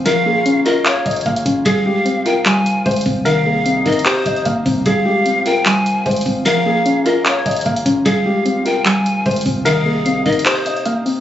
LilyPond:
<<
  \new Staff \with { instrumentName = "Pan flute" } { \time 4/4 \key f \minor \tempo 4 = 150 f''4. ees''8 des''4 r4 | f''4. g''8 aes''4 r4 | f''4. ees''8 c''4 r4 | f''4. g''8 aes''4 r4 |
f''4. ees''8 des''4 r4 | f''4. g''8 aes''4 r4 | f''4. ees''8 c''4 r4 | }
  \new Staff \with { instrumentName = "Felt piano" } { \time 4/4 \key f \minor bes'8 aes'4 bes'8 des''8 ees''8 f''8 r8 | aes'8 g'4 bes'4. c''8 r8 | bes'8 aes'4 bes'8 c''8 ees''8 f''8 r8 | aes'8 g'4 bes'4. c''8 r8 |
bes'8 aes'4 bes'8 des''8 ees''8 f''8 r8 | aes'8 g'4 bes'4. c''8 r8 | bes'8 aes'4 bes'8 c''8 ees''8 f''8 r8 | }
  \new Staff \with { instrumentName = "Synth pluck" } { \time 4/4 \key f \minor f8 bes8 des'8 f'8 f''4 bes8 des'8 | g8 aes8 c'8 f'8 g4 aes8 c'8 | ees8 bes8 c'8 ees'8 g'4 bes8 c'8 | g8 aes8 c'8 f'8 g4 aes8 c'8 |
f8 bes8 des'8 f'8 f''4 bes8 des'8 | g8 aes8 c'8 f'8 g4 aes8 c'8 | ees8 bes8 c'8 ees'8 g'4 bes8 c'8 | }
  \new Staff \with { instrumentName = "Accordion" } { \time 4/4 \key f \minor <des bes f'>1 | <f c' f'>1 | <c bes ees'>1 | <f c' f'>1 |
<des bes f'>1 | <f c' f'>1 | <c bes ees'>1 | }
  \new Staff \with { instrumentName = "808-style bass" } { \clef bass \time 4/4 \key f \minor f,,8 ees,,8. r4 r16 f,,8 f,,8 f,,8 | f,,2. f,,8 c,8~ | c,4. f,,8 r8 f,,8 f,,8 c,8 | f,,2. f,,8 f,,8~ |
f,,8 ees,,8. r4 r16 f,,8 f,,8 f,,8 | f,,2. f,,8 c,8~ | c,4. f,,8 r2 | }
  \new DrumStaff \with { instrumentName = "Drums" } \drummode { \time 4/4 hh4 hh8 hh8 <hc hh>8 <hh bd>32 hh32 hh32 hh32 <hh bd>16 hh16 <hh bd>8 | <hh bd>4 hh8 hh8 <hc hh>8 hh8 <hh bd>32 hh32 hh32 hh32 <hho bd>8 | hh4 \tuplet 3/2 { hh16 r16 r16 <hh bd>16 hh16 hh16 } <hc hh>8 <hh bd>16 hh16 <hh bd>8 <hho bd>8 | <hh bd>4 hh8 hh8 <hc hh>8 hh8 <hh bd>32 hh32 hh32 hh32 <hho bd>8 |
hh4 hh8 hh8 <hc hh>8 <hh bd>32 hh32 hh32 hh32 <hh bd>16 hh16 <hh bd>8 | <hh bd>4 hh8 hh8 <hc hh>8 hh8 <hh bd>32 hh32 hh32 hh32 <hho bd>8 | hh4 \tuplet 3/2 { hh16 r16 r16 <hh bd>16 hh16 hh16 } <hc hh>8 hh16 hh16 hh8 hho8 | }
>>